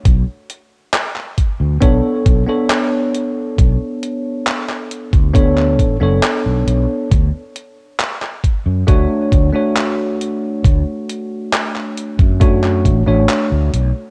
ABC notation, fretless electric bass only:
X:1
M:4/4
L:1/16
Q:1/4=68
K:D
V:1 name="Fretless electric bass" clef=bass
B,,, z6 D,, B,,, z B,,, z4 z | B,,, z6 D,,3 A,,, F,,, z B,,, B,,, z | D,, z6 F,, D,, z D,, z4 z | D,, z6 F,,3 A,,, A,,, z D,, B,,, z |]